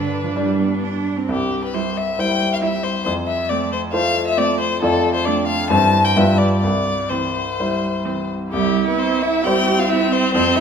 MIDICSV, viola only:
0, 0, Header, 1, 2, 480
1, 0, Start_track
1, 0, Key_signature, 0, "major"
1, 0, Tempo, 463679
1, 1334, Time_signature, 4, 2, 24, 8
1, 1799, Tempo, 440205
1, 6119, Tempo, 471328
1, 8999, Tempo, 452830
1, 11198, End_track
2, 0, Start_track
2, 0, Title_t, "Viola"
2, 0, Program_c, 0, 41
2, 0, Note_on_c, 0, 62, 37
2, 1098, Note_off_c, 0, 62, 0
2, 1805, Note_on_c, 0, 64, 42
2, 2162, Note_off_c, 0, 64, 0
2, 2762, Note_on_c, 0, 64, 45
2, 3118, Note_off_c, 0, 64, 0
2, 3725, Note_on_c, 0, 60, 46
2, 4081, Note_off_c, 0, 60, 0
2, 4675, Note_on_c, 0, 60, 51
2, 5033, Note_off_c, 0, 60, 0
2, 5646, Note_on_c, 0, 62, 53
2, 5999, Note_off_c, 0, 62, 0
2, 6124, Note_on_c, 0, 60, 50
2, 6468, Note_off_c, 0, 60, 0
2, 6588, Note_on_c, 0, 59, 45
2, 6936, Note_off_c, 0, 59, 0
2, 7553, Note_on_c, 0, 60, 39
2, 7911, Note_off_c, 0, 60, 0
2, 8515, Note_on_c, 0, 60, 37
2, 8876, Note_off_c, 0, 60, 0
2, 8993, Note_on_c, 0, 64, 53
2, 9969, Note_on_c, 0, 60, 59
2, 9985, Note_off_c, 0, 64, 0
2, 11198, Note_off_c, 0, 60, 0
2, 11198, End_track
0, 0, End_of_file